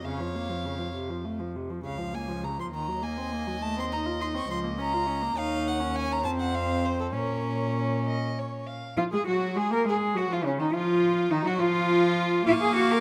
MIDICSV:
0, 0, Header, 1, 5, 480
1, 0, Start_track
1, 0, Key_signature, -5, "minor"
1, 0, Tempo, 598205
1, 47, Time_signature, 6, 3, 24, 8
1, 1966, Tempo, 585366
1, 5326, Tempo, 604230
1, 8206, Tempo, 576923
1, 10560, End_track
2, 0, Start_track
2, 0, Title_t, "Violin"
2, 0, Program_c, 0, 40
2, 52, Note_on_c, 0, 73, 56
2, 756, Note_off_c, 0, 73, 0
2, 1486, Note_on_c, 0, 77, 55
2, 1721, Note_on_c, 0, 80, 57
2, 1733, Note_off_c, 0, 77, 0
2, 1957, Note_on_c, 0, 82, 51
2, 1969, Note_off_c, 0, 80, 0
2, 2082, Note_off_c, 0, 82, 0
2, 2090, Note_on_c, 0, 84, 52
2, 2137, Note_off_c, 0, 84, 0
2, 2210, Note_on_c, 0, 82, 61
2, 2444, Note_on_c, 0, 80, 61
2, 2456, Note_off_c, 0, 82, 0
2, 2922, Note_on_c, 0, 81, 69
2, 2935, Note_off_c, 0, 80, 0
2, 3045, Note_off_c, 0, 81, 0
2, 3068, Note_on_c, 0, 84, 61
2, 3112, Note_off_c, 0, 84, 0
2, 3171, Note_on_c, 0, 82, 65
2, 3237, Note_off_c, 0, 82, 0
2, 3412, Note_on_c, 0, 84, 66
2, 3459, Note_off_c, 0, 84, 0
2, 3540, Note_on_c, 0, 85, 65
2, 3650, Note_off_c, 0, 85, 0
2, 3654, Note_on_c, 0, 84, 69
2, 3720, Note_off_c, 0, 84, 0
2, 3894, Note_on_c, 0, 82, 76
2, 4367, Note_on_c, 0, 77, 83
2, 4380, Note_off_c, 0, 82, 0
2, 4608, Note_on_c, 0, 78, 71
2, 4621, Note_off_c, 0, 77, 0
2, 4838, Note_on_c, 0, 80, 79
2, 4851, Note_off_c, 0, 78, 0
2, 4976, Note_on_c, 0, 82, 75
2, 4988, Note_off_c, 0, 80, 0
2, 5069, Note_off_c, 0, 82, 0
2, 5074, Note_on_c, 0, 81, 82
2, 5124, Note_off_c, 0, 81, 0
2, 5205, Note_on_c, 0, 78, 67
2, 5325, Note_on_c, 0, 77, 72
2, 5337, Note_off_c, 0, 78, 0
2, 5563, Note_on_c, 0, 72, 66
2, 5575, Note_off_c, 0, 77, 0
2, 5683, Note_off_c, 0, 72, 0
2, 5690, Note_on_c, 0, 69, 56
2, 5737, Note_off_c, 0, 69, 0
2, 5807, Note_on_c, 0, 70, 63
2, 6520, Note_off_c, 0, 70, 0
2, 7253, Note_on_c, 0, 65, 72
2, 7302, Note_off_c, 0, 65, 0
2, 7369, Note_on_c, 0, 68, 66
2, 7490, Note_off_c, 0, 68, 0
2, 7494, Note_on_c, 0, 66, 63
2, 7727, Note_off_c, 0, 66, 0
2, 7734, Note_on_c, 0, 68, 63
2, 7845, Note_off_c, 0, 68, 0
2, 7850, Note_on_c, 0, 70, 61
2, 7898, Note_off_c, 0, 70, 0
2, 7983, Note_on_c, 0, 68, 65
2, 8047, Note_off_c, 0, 68, 0
2, 8210, Note_on_c, 0, 66, 64
2, 8258, Note_off_c, 0, 66, 0
2, 8333, Note_on_c, 0, 65, 62
2, 8381, Note_off_c, 0, 65, 0
2, 8455, Note_on_c, 0, 61, 58
2, 8502, Note_off_c, 0, 61, 0
2, 8573, Note_on_c, 0, 63, 62
2, 8683, Note_off_c, 0, 63, 0
2, 8688, Note_on_c, 0, 65, 76
2, 9155, Note_on_c, 0, 63, 73
2, 9167, Note_off_c, 0, 65, 0
2, 9286, Note_on_c, 0, 66, 75
2, 9298, Note_off_c, 0, 63, 0
2, 9412, Note_on_c, 0, 65, 91
2, 9425, Note_off_c, 0, 66, 0
2, 10128, Note_off_c, 0, 65, 0
2, 10133, Note_on_c, 0, 85, 74
2, 10560, Note_off_c, 0, 85, 0
2, 10560, End_track
3, 0, Start_track
3, 0, Title_t, "Violin"
3, 0, Program_c, 1, 40
3, 41, Note_on_c, 1, 77, 50
3, 1126, Note_off_c, 1, 77, 0
3, 2202, Note_on_c, 1, 75, 50
3, 4326, Note_off_c, 1, 75, 0
3, 4368, Note_on_c, 1, 73, 61
3, 5086, Note_on_c, 1, 72, 64
3, 5099, Note_off_c, 1, 73, 0
3, 5794, Note_off_c, 1, 72, 0
3, 5799, Note_on_c, 1, 73, 48
3, 6467, Note_off_c, 1, 73, 0
3, 6523, Note_on_c, 1, 75, 54
3, 6789, Note_on_c, 1, 73, 43
3, 6800, Note_off_c, 1, 75, 0
3, 7008, Note_on_c, 1, 77, 46
3, 7020, Note_off_c, 1, 73, 0
3, 7255, Note_off_c, 1, 77, 0
3, 7262, Note_on_c, 1, 65, 62
3, 7310, Note_off_c, 1, 65, 0
3, 7384, Note_on_c, 1, 68, 59
3, 7430, Note_off_c, 1, 68, 0
3, 7493, Note_on_c, 1, 66, 62
3, 7731, Note_on_c, 1, 68, 68
3, 7743, Note_off_c, 1, 66, 0
3, 7843, Note_on_c, 1, 70, 62
3, 7855, Note_off_c, 1, 68, 0
3, 7964, Note_off_c, 1, 70, 0
3, 7969, Note_on_c, 1, 68, 67
3, 8033, Note_off_c, 1, 68, 0
3, 8214, Note_on_c, 1, 66, 63
3, 8330, Note_on_c, 1, 65, 60
3, 8343, Note_off_c, 1, 66, 0
3, 8437, Note_off_c, 1, 65, 0
3, 8442, Note_on_c, 1, 61, 62
3, 8491, Note_off_c, 1, 61, 0
3, 8560, Note_on_c, 1, 63, 61
3, 8610, Note_off_c, 1, 63, 0
3, 8678, Note_on_c, 1, 65, 69
3, 9150, Note_on_c, 1, 63, 75
3, 9163, Note_off_c, 1, 65, 0
3, 9277, Note_on_c, 1, 66, 75
3, 9289, Note_off_c, 1, 63, 0
3, 9390, Note_on_c, 1, 65, 88
3, 9403, Note_off_c, 1, 66, 0
3, 10114, Note_off_c, 1, 65, 0
3, 10119, Note_on_c, 1, 77, 70
3, 10560, Note_off_c, 1, 77, 0
3, 10560, End_track
4, 0, Start_track
4, 0, Title_t, "Cello"
4, 0, Program_c, 2, 42
4, 38, Note_on_c, 2, 41, 46
4, 1296, Note_off_c, 2, 41, 0
4, 1483, Note_on_c, 2, 37, 42
4, 2171, Note_off_c, 2, 37, 0
4, 2196, Note_on_c, 2, 39, 44
4, 3612, Note_off_c, 2, 39, 0
4, 3643, Note_on_c, 2, 37, 51
4, 4345, Note_off_c, 2, 37, 0
4, 4356, Note_on_c, 2, 39, 59
4, 5073, Note_on_c, 2, 41, 60
4, 5085, Note_off_c, 2, 39, 0
4, 5791, Note_on_c, 2, 46, 51
4, 5802, Note_off_c, 2, 41, 0
4, 7094, Note_off_c, 2, 46, 0
4, 7250, Note_on_c, 2, 65, 76
4, 7299, Note_off_c, 2, 65, 0
4, 7386, Note_on_c, 2, 68, 64
4, 7487, Note_off_c, 2, 68, 0
4, 7492, Note_on_c, 2, 66, 66
4, 7728, Note_on_c, 2, 68, 68
4, 7740, Note_off_c, 2, 66, 0
4, 7849, Note_off_c, 2, 68, 0
4, 7859, Note_on_c, 2, 70, 69
4, 7963, Note_off_c, 2, 70, 0
4, 7968, Note_on_c, 2, 68, 69
4, 8203, Note_on_c, 2, 66, 69
4, 8215, Note_off_c, 2, 68, 0
4, 8334, Note_on_c, 2, 65, 70
4, 8346, Note_off_c, 2, 66, 0
4, 8437, Note_on_c, 2, 61, 71
4, 8449, Note_off_c, 2, 65, 0
4, 8563, Note_off_c, 2, 61, 0
4, 8571, Note_on_c, 2, 63, 70
4, 8678, Note_on_c, 2, 65, 81
4, 8690, Note_off_c, 2, 63, 0
4, 9153, Note_on_c, 2, 63, 78
4, 9165, Note_off_c, 2, 65, 0
4, 9279, Note_off_c, 2, 63, 0
4, 9283, Note_on_c, 2, 66, 85
4, 9332, Note_off_c, 2, 66, 0
4, 9392, Note_on_c, 2, 65, 88
4, 10103, Note_off_c, 2, 65, 0
4, 10109, Note_on_c, 2, 65, 105
4, 10160, Note_off_c, 2, 65, 0
4, 10239, Note_on_c, 2, 68, 92
4, 10350, Note_off_c, 2, 68, 0
4, 10355, Note_on_c, 2, 66, 91
4, 10489, Note_on_c, 2, 70, 93
4, 10502, Note_off_c, 2, 66, 0
4, 10560, Note_off_c, 2, 70, 0
4, 10560, End_track
5, 0, Start_track
5, 0, Title_t, "Viola"
5, 0, Program_c, 3, 41
5, 43, Note_on_c, 3, 49, 42
5, 164, Note_on_c, 3, 53, 37
5, 176, Note_off_c, 3, 49, 0
5, 288, Note_on_c, 3, 58, 38
5, 300, Note_off_c, 3, 53, 0
5, 402, Note_on_c, 3, 53, 36
5, 414, Note_off_c, 3, 58, 0
5, 523, Note_on_c, 3, 49, 37
5, 535, Note_off_c, 3, 53, 0
5, 632, Note_on_c, 3, 53, 34
5, 644, Note_off_c, 3, 49, 0
5, 754, Note_off_c, 3, 53, 0
5, 759, Note_on_c, 3, 48, 37
5, 882, Note_on_c, 3, 53, 34
5, 894, Note_off_c, 3, 48, 0
5, 1003, Note_on_c, 3, 57, 36
5, 1016, Note_off_c, 3, 53, 0
5, 1121, Note_on_c, 3, 53, 33
5, 1133, Note_off_c, 3, 57, 0
5, 1252, Note_on_c, 3, 48, 33
5, 1265, Note_off_c, 3, 53, 0
5, 1366, Note_on_c, 3, 53, 34
5, 1378, Note_off_c, 3, 48, 0
5, 1473, Note_off_c, 3, 53, 0
5, 1478, Note_on_c, 3, 49, 41
5, 1590, Note_on_c, 3, 53, 36
5, 1602, Note_off_c, 3, 49, 0
5, 1715, Note_on_c, 3, 58, 38
5, 1727, Note_off_c, 3, 53, 0
5, 1833, Note_on_c, 3, 53, 34
5, 1846, Note_off_c, 3, 58, 0
5, 1959, Note_on_c, 3, 49, 36
5, 1971, Note_off_c, 3, 53, 0
5, 2081, Note_on_c, 3, 53, 38
5, 2093, Note_off_c, 3, 49, 0
5, 2195, Note_off_c, 3, 53, 0
5, 2200, Note_on_c, 3, 51, 41
5, 2319, Note_on_c, 3, 54, 36
5, 2332, Note_off_c, 3, 51, 0
5, 2434, Note_on_c, 3, 58, 40
5, 2446, Note_off_c, 3, 54, 0
5, 2562, Note_on_c, 3, 60, 37
5, 2574, Note_off_c, 3, 58, 0
5, 2682, Note_on_c, 3, 58, 40
5, 2695, Note_off_c, 3, 60, 0
5, 2804, Note_on_c, 3, 54, 38
5, 2816, Note_off_c, 3, 58, 0
5, 2917, Note_off_c, 3, 54, 0
5, 2922, Note_on_c, 3, 57, 43
5, 3051, Note_on_c, 3, 60, 38
5, 3063, Note_off_c, 3, 57, 0
5, 3179, Note_on_c, 3, 63, 41
5, 3192, Note_off_c, 3, 60, 0
5, 3284, Note_on_c, 3, 65, 40
5, 3297, Note_off_c, 3, 63, 0
5, 3406, Note_on_c, 3, 63, 46
5, 3418, Note_off_c, 3, 65, 0
5, 3521, Note_on_c, 3, 60, 46
5, 3533, Note_off_c, 3, 63, 0
5, 3643, Note_off_c, 3, 60, 0
5, 3646, Note_on_c, 3, 53, 46
5, 3763, Note_on_c, 3, 58, 44
5, 3775, Note_off_c, 3, 53, 0
5, 3879, Note_on_c, 3, 61, 48
5, 3892, Note_off_c, 3, 58, 0
5, 4006, Note_on_c, 3, 65, 47
5, 4018, Note_off_c, 3, 61, 0
5, 4113, Note_on_c, 3, 61, 47
5, 4126, Note_off_c, 3, 65, 0
5, 4237, Note_on_c, 3, 58, 48
5, 4249, Note_off_c, 3, 61, 0
5, 4353, Note_off_c, 3, 58, 0
5, 4358, Note_on_c, 3, 63, 57
5, 4713, Note_on_c, 3, 61, 57
5, 4725, Note_off_c, 3, 63, 0
5, 5065, Note_off_c, 3, 61, 0
5, 5070, Note_on_c, 3, 60, 61
5, 5789, Note_on_c, 3, 61, 55
5, 5801, Note_off_c, 3, 60, 0
5, 7093, Note_off_c, 3, 61, 0
5, 7253, Note_on_c, 3, 53, 65
5, 7302, Note_off_c, 3, 53, 0
5, 7376, Note_on_c, 3, 56, 57
5, 7424, Note_off_c, 3, 56, 0
5, 7488, Note_on_c, 3, 54, 62
5, 7718, Note_on_c, 3, 56, 63
5, 7729, Note_off_c, 3, 54, 0
5, 7838, Note_on_c, 3, 58, 66
5, 7850, Note_off_c, 3, 56, 0
5, 7953, Note_on_c, 3, 56, 65
5, 7965, Note_off_c, 3, 58, 0
5, 8186, Note_on_c, 3, 54, 67
5, 8198, Note_off_c, 3, 56, 0
5, 8305, Note_off_c, 3, 54, 0
5, 8310, Note_on_c, 3, 53, 60
5, 8434, Note_on_c, 3, 49, 64
5, 8446, Note_off_c, 3, 53, 0
5, 8554, Note_on_c, 3, 51, 62
5, 8566, Note_off_c, 3, 49, 0
5, 8665, Note_off_c, 3, 51, 0
5, 8670, Note_on_c, 3, 53, 75
5, 9149, Note_off_c, 3, 53, 0
5, 9159, Note_on_c, 3, 51, 73
5, 9265, Note_off_c, 3, 51, 0
5, 9270, Note_on_c, 3, 54, 76
5, 9380, Note_on_c, 3, 53, 88
5, 9392, Note_off_c, 3, 54, 0
5, 10099, Note_off_c, 3, 53, 0
5, 10104, Note_on_c, 3, 58, 84
5, 10560, Note_off_c, 3, 58, 0
5, 10560, End_track
0, 0, End_of_file